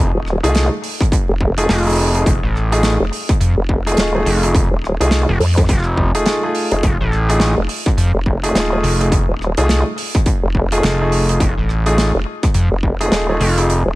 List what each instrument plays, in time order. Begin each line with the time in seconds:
Already playing: analog synth bass F1
0.15 wobble bass D#1
0.26 cross-stick
0.43 wobble bass C2, grand piano A3 D#4 F4 G#4, closed hi-hat
0.55 snare, closed hi-hat
0.84 open hi-hat
1.01 kick, cross-stick, closed hi-hat
1.12 kick, closed hi-hat
1.29 wobble bass F1
1.41 kick
1.58 grand piano A3 D#4 F4 G#4, closed hi-hat
1.69 analog synth bass F1, grand piano A3 D#4 F4 G#4, snare, closed hi-hat
1.74 closed hi-hat
1.78 closed hi-hat
1.83 grand piano A3 D#4 F4 G#4, closed hi-hat
1.87 closed hi-hat
1.90 closed hi-hat
1.93 closed hi-hat
1.96 closed hi-hat, open hi-hat
2.15 grand piano A3 D#4 F4 G#4, closed hi-hat
2.26 analog synth bass F1, kick, closed hi-hat
2.43 analog synth bass A1
2.56 cross-stick
2.72 grand piano A3 D#4 F4 G#4, closed hi-hat
2.83 snare, closed hi-hat
3.00 wobble bass F1
3.13 open hi-hat
3.29 kick, cross-stick, closed hi-hat
3.40 analog synth bass F2, closed hi-hat
3.58 wobble bass F1
3.69 kick
3.86 grand piano A3 D#4 F4 G#4, closed hi-hat
3.97 wobble bass D#1, grand piano A3 D#4 F4 G#4, snare, closed hi-hat
4.15 grand piano A3 D#4 F4 G#4
4.26 analog synth bass F1, open hi-hat
4.43 grand piano A3 D#4 F4 G#4, closed hi-hat
4.55 kick, closed hi-hat
4.71 wobble bass D#1
4.84 cross-stick
5.00 wobble bass C2, grand piano A3 D#4 F4 G#4, closed hi-hat
5.11 snare, closed hi-hat
5.29 analog synth bass F1
5.40 wobble bass F2, open hi-hat
5.58 kick, cross-stick, closed hi-hat
5.61 cross-stick
5.64 cross-stick
5.67 analog synth bass F1, kick, cross-stick, closed hi-hat
5.70 cross-stick
5.74 cross-stick
5.78 cross-stick
5.83 cross-stick
5.97 kick
6.15 grand piano A3 D#4 F4 G#4, closed hi-hat
6.26 grand piano A3 D#4 F4 G#4, snare, closed hi-hat
6.43 grand piano A3 D#4 F4 G#4
6.55 open hi-hat
6.71 wobble bass F1, grand piano A3 D#4 F4 G#4, closed hi-hat
6.83 analog synth bass F1, kick, closed hi-hat
7.00 analog synth bass A1
7.12 cross-stick
7.29 grand piano A3 D#4 F4 G#4, closed hi-hat
7.40 snare, closed hi-hat
7.58 wobble bass F1
7.69 open hi-hat
7.86 kick, cross-stick, closed hi-hat
7.97 analog synth bass F2, closed hi-hat
8.15 wobble bass F1
8.26 kick
8.43 grand piano A3 D#4 F4 G#4, closed hi-hat
8.55 wobble bass D#1, grand piano A3 D#4 F4 G#4, snare, closed hi-hat
8.72 grand piano A3 D#4 F4 G#4
8.83 analog synth bass F1, open hi-hat
9.00 grand piano A3 D#4 F4 G#4, closed hi-hat
9.12 kick, closed hi-hat
9.29 wobble bass D#1
9.41 cross-stick
9.57 wobble bass C2, grand piano A3 D#4 F4 G#4, closed hi-hat
9.69 snare, closed hi-hat
9.98 open hi-hat
10.15 kick, cross-stick, closed hi-hat
10.26 kick, closed hi-hat
10.43 wobble bass F1
10.55 kick
10.72 grand piano A3 D#4 F4 G#4, closed hi-hat
10.83 analog synth bass F1, grand piano A3 D#4 F4 G#4, snare, closed hi-hat
11.01 grand piano A3 D#4 F4 G#4
11.12 open hi-hat
11.29 grand piano A3 D#4 F4 G#4, closed hi-hat
11.40 analog synth bass F1, kick, closed hi-hat
11.58 analog synth bass A1
11.69 cross-stick
11.86 grand piano A3 D#4 F4 G#4, closed hi-hat
11.98 snare, closed hi-hat
12.15 wobble bass F1
12.43 kick, cross-stick, closed hi-hat
12.54 analog synth bass F2, closed hi-hat
12.72 wobble bass F1
12.83 kick
13.00 grand piano A3 D#4 F4 G#4, closed hi-hat
13.11 wobble bass D#1, grand piano A3 D#4 F4 G#4, snare, closed hi-hat
13.29 grand piano A3 D#4 F4 G#4
13.40 analog synth bass F1, open hi-hat
13.58 grand piano A3 D#4 F4 G#4, closed hi-hat
13.70 closed hi-hat
13.86 wobble bass D#1